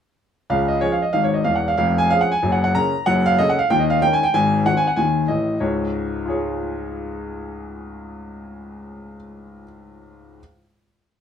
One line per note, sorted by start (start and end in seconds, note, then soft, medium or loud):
0.50 0.77 C#2 medium
0.50 0.78 C#3 medium
0.50 0.69 F5 medium
0.68 0.82 D#5 medium
0.81 0.99 F3 soft
0.81 1.00 C#4 soft
0.81 1.00 G#4 soft
0.81 0.92 C#5 medium
0.92 1.03 F5 medium
1.02 1.14 D#5 medium
1.13 1.41 G#1 medium
1.13 1.41 G#2 soft
1.13 1.24 F5 medium
1.24 1.35 C#5 medium
1.34 1.45 D#5 medium
1.44 1.71 E1 medium
1.44 1.71 E2 medium
1.44 1.56 F5 medium
1.55 1.67 F#5 medium
1.68 1.76 F5 medium
1.78 2.05 F1 medium
1.78 2.05 F2 medium
1.78 1.97 F5 medium
1.98 2.10 G#5 medium
2.10 2.29 F3 soft
2.10 2.29 C#4 soft
2.10 2.29 G#4 medium
2.10 2.21 F5 medium
2.21 2.31 F#5 medium
2.31 2.53 G#5 medium
2.42 2.69 F#1 medium
2.42 2.70 F#2 medium
2.52 2.62 F#5 medium
2.64 2.74 F#5 medium
2.75 2.92 C#3 soft
2.75 2.93 C#4 soft
2.75 2.93 A#4 soft
2.75 3.06 A#5 loud
3.06 3.33 F#1 medium
3.06 3.33 F#2 medium
3.06 3.25 F#5 loud
3.26 3.38 F5 loud
3.38 3.57 C#3 medium
3.38 3.57 C#4 medium
3.38 3.57 A4 medium
3.38 3.49 D#5 loud
3.49 3.60 F#5 medium
3.59 3.70 F5 medium
3.70 3.98 D#2 medium
3.70 3.97 D#3 medium
3.70 3.81 G5 loud
3.80 3.91 D#5 medium
3.90 4.01 F5 medium
4.02 4.19 D#3 soft
4.02 4.20 C#4 soft
4.02 4.20 A#4 soft
4.02 4.13 G5 loud
4.13 4.23 G#5 medium
4.23 4.34 G5 medium
4.34 4.61 G#1 medium
4.34 4.61 G#2 medium
4.34 4.66 G#5 medium
4.66 4.84 D#3 soft
4.66 4.84 C4 soft
4.66 4.84 F#4 soft
4.66 4.76 F#5 medium
4.77 4.87 G#5 medium
4.87 4.98 F#5 medium
4.96 5.25 D#2 medium
4.96 5.25 D#3 medium
4.96 5.29 G#5 medium
5.28 5.55 A1 soft
5.28 5.55 A2 medium
5.28 5.61 D#5 medium
5.60 9.16 C#2 medium
5.60 9.16 G#2 medium
5.60 6.28 C#5 medium
6.25 9.63 F4 soft
6.25 9.64 G#4 soft
6.29 9.65 C#5 soft